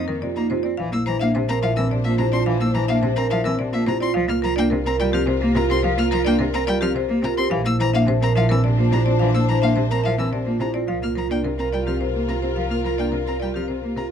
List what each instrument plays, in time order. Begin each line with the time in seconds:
Already playing: double bass F2, string section A#3 D#4, vibraphone C4, marimba D#5
0.08 cello D#3, marimba A#4
0.22 cello C3, vibraphone F4, marimba D5
0.35 cello A#3, vibraphone D#4, violin A#5
0.50 cello C3, vibraphone F4, marimba C5
0.63 cello C4, marimba D5
0.77 double bass A#1, cello E3, string section D4 C5, marimba F5
0.92 cello A#3, vibraphone E4, violin E6
1.06 cello E3, vibraphone E4, marimba C5, violin A#5
1.20 cello A#3, vibraphone D4, marimba E5, violin F5
1.35 cello C3, marimba C5
1.48 cello C4, vibraphone A#4, violin A#5
1.62 cello F3, vibraphone E4, marimba E5, violin F5
1.76 cello E3, vibraphone C4, marimba A#4, violin E6
1.90 cello C3, marimba D5
2.04 cello A#3, vibraphone F4, violin E5
2.18 cello C3, vibraphone E4, marimba C5, violin A#5
2.32 cello C4, vibraphone F4, marimba D5, violin C6
2.46 cello E3, marimba F5
2.60 cello A#3, vibraphone E4, violin E6
2.74 cello E3, vibraphone E4, marimba C5, violin A#5
2.88 cello A#3, vibraphone D4, marimba E5, violin F5
3.02 cello C3, marimba C5
3.16 cello C4, vibraphone A#4, violin A#5
3.30 cello F3, vibraphone E4, marimba E5, violin F5
3.44 cello E3, vibraphone C4, marimba A#4, violin E6
3.59 cello C3, marimba D5
3.72 cello A#3, vibraphone F4, violin E5
3.86 cello C3, vibraphone E4, marimba C5, violin A#5
4.00 cello C4, vibraphone F4, marimba D5, violin C6
4.14 double bass C2, cello F3, string section F4 A#4, marimba F5
4.28 cello A#3, vibraphone F4, violin F6
4.42 cello F3, vibraphone F4, marimba A#4, violin A#5
4.56 cello A#3, vibraphone D4, marimba D5, violin G5
4.70 cello C3, marimba A#4
4.84 cello C4, vibraphone A#4, violin A#5
4.98 cello G3, vibraphone F4, marimba D5, violin G5
5.12 cello F3, vibraphone C4, marimba G4, violin F6
5.26 cello C3, marimba C5
5.40 cello A#3, vibraphone G4
5.54 cello C3, vibraphone F4, marimba A#4, violin A#5
5.69 cello C4, vibraphone G4, marimba C5, violin C6
5.82 cello F3, marimba F5
5.97 cello A#3, vibraphone F4, violin F6
6.11 cello F3, vibraphone F4, marimba A#4, violin A#5
6.25 cello A#3, vibraphone D4, marimba D5, violin G5
6.39 cello C3, marimba A#4
6.53 cello C4, vibraphone A#4, violin A#5
6.67 cello G3, vibraphone F4, marimba D5, violin G5
6.81 cello F3, vibraphone C4, marimba G4, violin F6
6.94 cello C3, marimba C5
7.09 cello A#3, vibraphone G4
7.22 cello C3, vibraphone F4, marimba A#4, violin A#5
7.37 cello C4, vibraphone G4, marimba C5, violin C6
7.50 double bass A#1, cello E3, string section D4 C5, marimba F5
7.64 cello A#3, vibraphone E4, violin E6
7.79 cello E3, vibraphone E4, marimba C5, violin A#5
7.93 cello A#3, vibraphone D4, marimba E5, violin F5
8.07 cello C3, marimba C5
8.21 cello C4, vibraphone A#4, violin A#5
8.35 cello F3, vibraphone E4, marimba E5, violin F5
8.49 cello E3, vibraphone C4, marimba A#4, violin E6
8.64 cello C3, marimba D5
8.77 cello A#3, vibraphone F4
8.91 cello C3, vibraphone E4, marimba C5, violin A#5
9.05 cello C4, vibraphone F4, marimba D5
9.19 cello E3, marimba F5
9.34 cello A#3, vibraphone E4, violin E6
9.48 cello E3, vibraphone E4, marimba C5, violin A#5
9.62 cello A#3, vibraphone D4, marimba E5, violin F5
9.76 cello C3, marimba C5
9.89 cello C4, vibraphone A#4, violin A#5
10.04 cello F3, vibraphone E4, marimba E5, violin F5
10.18 cello E3, vibraphone C4, marimba A#4, violin E6
10.32 cello C3, marimba D5
10.46 cello A#3, vibraphone F4
10.60 cello C3, vibraphone E4, marimba C5, violin A#5
10.73 cello C4, vibraphone F4, marimba D5
10.87 double bass C2, cello F3, string section F4 A#4, marimba F5
11.02 cello A#3, vibraphone F4, violin F6
11.15 cello F3, vibraphone F4, marimba A#4, violin A#5
11.29 cello A#3, vibraphone D4, marimba D5, violin G5
11.44 cello C3, marimba A#4
11.58 cello C4, vibraphone A#4, violin A#5
11.72 cello G3, vibraphone F4, marimba D5, violin G5
11.86 cello F3, vibraphone C4, marimba G4, violin F6
12.00 cello C3, marimba C5
12.14 cello A#3, vibraphone G4
12.28 cello C3, vibraphone F4, marimba A#4, violin A#5
12.42 cello C4, vibraphone G4, marimba C5
12.56 cello F3, marimba F5
12.70 cello A#3, vibraphone F4, violin F6
12.84 cello F3, vibraphone F4, marimba A#4, violin A#5
12.98 cello A#3, vibraphone D4, marimba D5, violin G5
13.12 cello C3, marimba A#4
13.26 cello C4, vibraphone A#4, violin A#5
13.40 cello G3, vibraphone F4, marimba D5, violin G5
13.54 cello F3, vibraphone C4, marimba G4, violin F6
13.68 cello C3, marimba C5
13.83 cello A#3, vibraphone G4
13.96 cello C3, vibraphone F4, marimba A#4, violin A#5